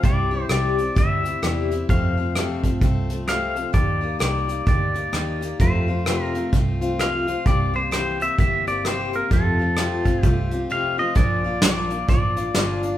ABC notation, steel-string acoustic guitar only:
X:1
M:4/4
L:1/8
Q:"Swing" 1/4=129
K:Bb
V:1 name="Steel-string acoustic guitar"
[C,G,C=EG] [CEG] [C,G,CEG] [CEG] [G,CEG] [CEG] [C,G,CEG] [CEG] | [F,,C,F,A,CA] [F,A,CA] [F,,C,F,A,CA] [F,A,CA] [F,A,CA] [F,A,CA] [F,,C,F,A,CA] [F,A,CA] | [E,B,EG] [B,EG] [E,B,EG] [B,EG] [E,B,EG] [B,EG] [E,B,EG] [B,EG] | [F,,C,F,A,CF] [F,A,CF] [F,,C,F,A,CF] [F,A,CF] [F,A,CF] [F,A,CF] [F,,C,F,A,CF] [F,A,CF] |
[C,=E,B,CG] [B,CG] [C,E,B,CG] [B,CG] [E,B,CG] [B,CG] [C,E,B,CG] [B,CG] | [F,,C,F,A,CF] [F,A,CF] [F,,C,F,A,CF] [F,A,CF] [F,A,CF] [F,A,CF] [F,,C,F,A,CF] [F,A,CF] | [B,,F,B,DF] [B,DF] [B,,F,B,DF] [B,DF] [F,B,DF] [B,DF] [B,,F,B,DF] [B,DF] |]